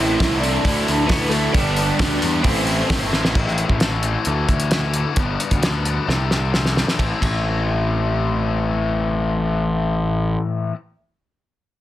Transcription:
Already playing: picked electric bass A1, overdriven electric guitar A2 E3 A3 C4 E4 A4, clean electric guitar E4, tine electric piano C5, tonewheel organ C5 E5 A5 E6
0.20 picked electric bass C2, overdriven electric guitar A2 E3 A3 C4 E4 A4, kick, snare, open hi-hat
0.40 overdriven electric guitar A2 E3 A3 C4 A4, clean electric guitar D4, tine electric piano A4, open hi-hat
0.44 overdriven electric guitar E4
0.65 picked electric bass D2, overdriven electric guitar D3 E3 A3 E4 A4, tonewheel organ D5, kick, open hi-hat
0.88 picked electric bass D2, open hi-hat
1.07 picked electric bass D2, overdriven electric guitar D3 E3 A3 E4 A4, clean electric guitar B3, tine electric piano E4, kick, snare, open hi-hat
1.29 overdriven electric guitar D3 E3 A3 E4 A4, clean electric guitar A3, tine electric piano F#4, open hi-hat
1.52 picked electric bass G1, overdriven electric guitar G2 D3 G4, clean electric guitar D4, tine electric piano B4, tonewheel organ B4 F#5 D6, kick, open hi-hat
1.56 overdriven electric guitar G3 B3 D4, tonewheel organ G5
1.76 open hi-hat
1.99 picked electric bass D2, overdriven electric guitar G2 D3 G3 B3 D4 G4, kick, snare, open hi-hat
2.22 picked electric bass E2, overdriven electric guitar G2 D3 G3 B3 D4 G4, open hi-hat
2.43 picked electric bass A1, overdriven electric guitar A2 E3 A3 A4, clean electric guitar C4, tine electric piano A4, tonewheel organ C5 A5 E6, kick, open hi-hat
2.47 overdriven electric guitar C4 E4
2.67 open hi-hat
2.90 picked electric bass G1, overdriven electric guitar A2 E3 A3 C4 E4 A4, kick, snare, open hi-hat
3.13 picked electric bass A1, overdriven electric guitar A2 E3 A3 C4 E4 A4, snare
3.25 snare
3.35 picked electric bass A1, overdriven electric guitar A2 E3 A3 C4 E4, kick, crash
3.48 snare
3.58 closed hi-hat
3.69 picked electric bass A1, kick
3.80 overdriven electric guitar A2 E3 A3 C4 E4, snare, closed hi-hat
4.03 overdriven electric guitar A2 E3 A3 C4, closed hi-hat
4.07 overdriven electric guitar E4
4.25 picked electric bass D2, overdriven electric guitar D3 E3 A3 E4, closed hi-hat
4.49 picked electric bass D2, kick, closed hi-hat
4.60 closed hi-hat
4.71 overdriven electric guitar D3 E3 A3 E4, snare, closed hi-hat
4.94 overdriven electric guitar D3 E3 A3 E4, closed hi-hat
5.16 picked electric bass G1, overdriven electric guitar G2 D3 G3 B3 D4, kick, closed hi-hat
5.40 closed hi-hat
5.51 picked electric bass D2, kick, closed hi-hat
5.62 overdriven electric guitar G2 D3 G3 B3 D4, snare, closed hi-hat
5.85 overdriven electric guitar G2 D3 G3 B3 D4, closed hi-hat
6.07 picked electric bass C2, overdriven electric guitar C3 G3 C4 D4, snare
6.31 snare
6.53 overdriven electric guitar C3 G3 C4 D4, snare
6.65 snare
6.76 overdriven electric guitar C3 G3 C4 D4, snare
6.88 snare
6.97 picked electric bass A1, overdriven electric guitar A2 E3 A3 C4, kick, ride
7.01 overdriven electric guitar E4
7.21 picked electric bass A1, overdriven electric guitar A2 E3 A3 C4, kick, ride
7.26 overdriven electric guitar E4

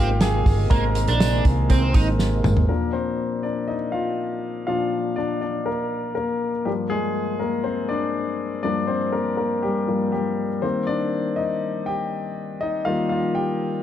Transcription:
Already playing: fingered electric bass G#1, tonewheel organ C3 D#3 G#3 A#3, grand piano G#3 A#3 C4 D#4 F4 G4 D#5 F5 G5
0.21 grand piano G#4 G#5, snare, closed hi-hat, tambourine
0.46 fingered electric bass G1, kick, open hi-hat, tambourine
0.70 fingered electric bass G#1, grand piano G#3 A#3 C4 A#4 A#5, overdriven electric guitar A#3, kick, closed hi-hat, tambourine
0.95 closed hi-hat, tambourine
1.08 fingered electric bass A#1, overdriven electric guitar D4, closed hi-hat
1.20 snare, closed hi-hat, tambourine
1.45 fingered electric bass C2, kick, closed hi-hat, tambourine
1.70 grand piano G#3 A#3 C4, overdriven electric guitar C4, kick, closed hi-hat
1.94 fingered electric bass G#1, overdriven electric guitar D#4, kick, closed hi-hat, tambourine
2.19 snare, tambourine
2.44 fingered electric bass G#1, mid tom, tambourine
2.57 floor tom
2.69 grand piano A#2 F3 A#3 D4 A#4
2.93 grand piano C4 C5
3.43 grand piano D4 D5
3.68 grand piano D#4 D#5
3.92 grand piano F4 F5
4.67 grand piano A#2 F3 D4 F4 F5
5.16 grand piano D4 D5
5.41 grand piano D4 D5
5.66 grand piano A#3 A#4
6.15 grand piano A#3 A#4
6.65 grand piano G2 F3 G3 A#3 G4
6.90 grand piano G#3 G#4
7.39 grand piano A#3 A#4
7.64 grand piano C4 C5
7.89 grand piano D4 D5
8.63 grand piano G2 F3 A#3 D4 D5
8.87 grand piano C4 C5
9.12 grand piano A#3 A#4
9.37 grand piano A#3 A#4
9.62 grand piano G3 G4
9.88 grand piano G2 F3 A#3
10.12 grand piano G3 G4
10.62 grand piano D#3 G3 A#3 C4 C5
10.87 grand piano D4 D5
11.36 grand piano D#4 D#5
11.86 grand piano G4 G5
12.61 grand piano D#4 D#5
12.85 grand piano D#3 G3 A#3 F4 F5
13.09 grand piano F4 F5
13.35 grand piano G4 G5

